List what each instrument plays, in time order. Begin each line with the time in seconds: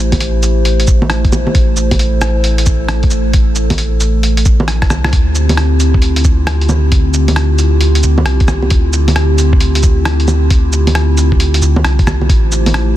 Already playing: sub bass A1, ambient pad A3 E4 G4 C5
0.12 kick, closed hi-hat, low bongo
0.20 closed hi-hat
0.43 closed hi-hat, cabasa
0.65 closed hi-hat
0.80 closed hi-hat
0.87 sub bass A1, kick, cabasa
1.02 low bongo
1.10 cross-stick, closed hi-hat
1.25 kick, closed hi-hat
1.32 low bongo, cabasa
1.47 low bongo
1.54 sub bass A1, ambient pad A4, kick, closed hi-hat
1.77 cabasa
1.91 kick, closed hi-hat, low bongo
1.99 closed hi-hat
2.22 cross-stick, closed hi-hat, cabasa
2.44 closed hi-hat
2.58 closed hi-hat
2.66 kick, cabasa
2.88 cross-stick, closed hi-hat
3.03 kick, closed hi-hat
3.10 cabasa
3.33 sub bass A1, kick, closed hi-hat
3.56 cabasa
3.70 kick, closed hi-hat, low bongo
3.78 closed hi-hat
4.00 closed hi-hat, cabasa
4.23 closed hi-hat
4.37 closed hi-hat
4.45 sub bass A1, kick, cabasa
4.60 low bongo
4.68 cross-stick, closed hi-hat
4.82 kick, cross-stick, closed hi-hat
4.90 sub bass C2, cross-stick, low bongo, cabasa
5.04 cross-stick, low bongo
5.13 sub bass D2, ambient pad D3 C4 E4 F4 G4, kick, closed hi-hat
5.35 cabasa
5.49 closed hi-hat, low bongo
5.57 cross-stick, closed hi-hat
5.80 closed hi-hat, cabasa
5.94 kick
6.02 closed hi-hat
6.16 closed hi-hat
6.24 kick, cabasa
6.47 cross-stick, closed hi-hat
6.61 closed hi-hat
6.69 low bongo, cabasa
6.92 sub bass D2, kick, closed hi-hat
7.14 cabasa
7.28 closed hi-hat, low bongo
7.36 cross-stick, closed hi-hat
7.59 closed hi-hat, cabasa
7.81 closed hi-hat
7.95 closed hi-hat
8.03 sub bass D2, cabasa
8.18 low bongo
8.26 sub bass C2, cross-stick, closed hi-hat
8.40 kick, closed hi-hat
8.48 sub bass C2, cross-stick, low bongo, cabasa
8.62 low bongo
8.70 sub bass D2, kick, closed hi-hat
8.93 cabasa
9.08 closed hi-hat, low bongo
9.16 cross-stick, closed hi-hat
9.38 closed hi-hat, cabasa
9.53 kick
9.60 closed hi-hat
9.75 closed hi-hat
9.83 kick, cabasa
10.05 cross-stick, closed hi-hat
10.20 closed hi-hat
10.28 low bongo, cabasa
10.50 sub bass D2, kick, closed hi-hat
10.73 cabasa
10.87 closed hi-hat, low bongo
10.95 cross-stick, closed hi-hat
11.17 closed hi-hat, cabasa
11.32 kick
11.40 closed hi-hat
11.54 closed hi-hat
11.62 sub bass D2, cabasa
11.76 low bongo
11.84 sub bass C2, cross-stick, closed hi-hat
11.99 kick, closed hi-hat
12.06 sub bass C2, cross-stick, low bongo, cabasa
12.21 low bongo
12.29 sub bass A1, ambient pad A3 G4 C5, kick, closed hi-hat
12.52 cabasa
12.66 closed hi-hat, low bongo
12.74 cross-stick, closed hi-hat